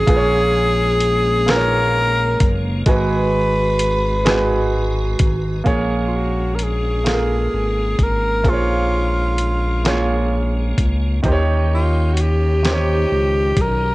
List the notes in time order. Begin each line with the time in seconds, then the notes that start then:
Already playing: C#4 G#4
0.07 A#1 G#3 A#3 F4 G#4 B4, kick, closed hi-hat
0.16 C#5
1.00 closed hi-hat
1.46 A#3 F4 G#4 B4, snare, closed hi-hat
1.51 A#4
1.57 C#5
2.40 F#1, kick, closed hi-hat
2.86 G#1 G#3 F#4 G#4 B4 A#5, kick, closed hi-hat
3.79 closed hi-hat
4.25 G#3 F#4 G#4 B4, snare, closed hi-hat
5.19 G#1, kick, closed hi-hat
5.64 A#1 G#3 A#3 C#4 G#4 C#5 F5, kick, closed hi-hat
6.07 F4
6.16 F#4
6.55 A#4, closed hi-hat
6.63 G#4
7.04 A#3 F4 G#4 A4, snare, closed hi-hat
7.14 A#4
7.54 G#1
7.99 G#1 A#4, kick, closed hi-hat
8.44 A#1 A#3 F4 G#4 C5, kick, closed hi-hat
8.49 F4 C#5
9.38 closed hi-hat
9.84 A#3 F4 G#4 C#5, snare, closed hi-hat
10.78 C#2, kick, closed hi-hat
11.23 D#2 D#3 C#4 D#4 G4 C5, kick, closed hi-hat
11.32 C#5
11.74 F4
12.13 F#4
12.17 closed hi-hat
12.21 G4
12.63 D#3 D#4 G4 C5, snare, closed hi-hat
12.73 C#5
13.12 C#2
13.57 B1, kick, closed hi-hat
13.61 A#4